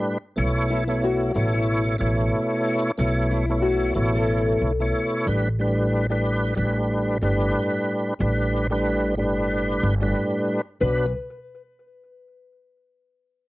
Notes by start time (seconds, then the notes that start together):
Already playing: A2 G3 D4 B4
0.36 B1 B2 A3 E4 C#5
0.70 E4
0.87 B2 A3 E4 C#5
1.04 F#4
1.34 A1 B2 A3 E4 C#5
1.54 E4
1.98 A1 B2 A3 E4 C#5
2.97 B1 B2 A3 E4 C#5
3.31 E4
3.49 B2 A3 E4 C#5
3.62 F#4
3.94 A1 B2 A3 E4 C#5
4.15 A4
4.62 B1
4.80 B2 A3 E4 C#5
5.26 A1 A2 G3 D4 B4
5.59 A2 G3 D4 B4
6.09 A2 G3 D4 B4
6.55 A1 A2 G3 D4 B4
7.22 G1 A2 G3 D4 B4
8.19 A1 A2 G3 D4 B4
8.70 A2 G3 D4 B4
9.17 G1 A2 G3 D4 B4
9.83 G1
10.01 A2 G3 D4 B4
10.80 B1 B2 F#3 D4 B4